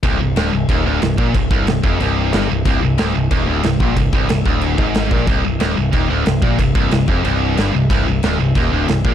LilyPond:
<<
  \new Staff \with { instrumentName = "Distorted electric guitar" } { \clef bass \time 4/4 \key c \minor \tempo 4 = 183 c,8 c,8 d,8 c,8 ees,8 d,8 c,8 bes,8 | c,8 c,8 c,8 f,8 c,4 g,8 c,8 | c,8 c,8 d,8 c,8 ees,8 d,8 c,8 bes,8 | c,8 c,8 c,8 d,4 aes,4 bes,8 |
c,8 c,8 d,8 c,8 ees,8 d,8 c,8 bes,8 | c,8 c,8 c,8 f,8 c,4 g,8 c,8 | c,8 c,8 d,8 c,8 ees,8 d,8 c,8 bes,8 | }
  \new Staff \with { instrumentName = "Distorted electric guitar" } { \clef bass \time 4/4 \key c \minor c,8 c,8 d,8 c,8 ees,8 d,8 c,8 bes,8 | c,8 c,8 c,8 f,8 c,4 g,8 c,8 | c,8 c,8 d,8 c,8 ees,8 d,8 c,8 bes,8 | c,8 c,8 c,8 d,4 aes,4 bes,8 |
c,8 c,8 d,8 c,8 ees,8 d,8 c,8 bes,8 | c,8 c,8 c,8 f,8 c,4 g,8 c,8 | c,8 c,8 d,8 c,8 ees,8 d,8 c,8 bes,8 | }
  \new Staff \with { instrumentName = "Picked electric bass" } { \clef bass \time 4/4 \key c \minor c,,8 c,,8 d,,8 c,,8 ees,,8 d,,8 c,,8 bes,,8 | c,,8 c,,8 c,,8 f,,8 c,,4 g,,8 c,,8 | c,,8 c,,8 d,,8 c,,8 ees,,8 d,,8 c,,8 bes,,8 | c,,8 c,,8 c,,8 d,,4 aes,,4 bes,,8 |
c,,8 c,,8 d,,8 c,,8 ees,,8 d,,8 c,,8 bes,,8 | c,,8 c,,8 c,,8 f,,8 c,,4 g,,8 c,,8 | c,,8 c,,8 d,,8 c,,8 ees,,8 d,,8 c,,8 bes,,8 | }
  \new DrumStaff \with { instrumentName = "Drums" } \drummode { \time 4/4 <cymc bd>4 <cymc sn>4 <cymc bd>4 <cymc sn>8 bd8 | <cymc bd>8 bd8 <cymc sn>8 bd8 cymc4 <cymc sn>4 | <cymc bd>4 <cymc sn>4 <cymc bd>4 <cymc sn>8 bd8 | <cymc bd>8 bd8 <cymc sn>8 bd8 cymc8 bd8 <cymc sn>8 bd8 |
<cymc bd>4 <cymc sn>4 <cymc bd>4 <cymc sn>8 bd8 | <cymc bd>8 bd8 <cymc sn>8 bd8 cymc4 <cymc sn>4 | <cymc bd>4 <cymc sn>4 <cymc bd>4 <cymc sn>8 bd8 | }
>>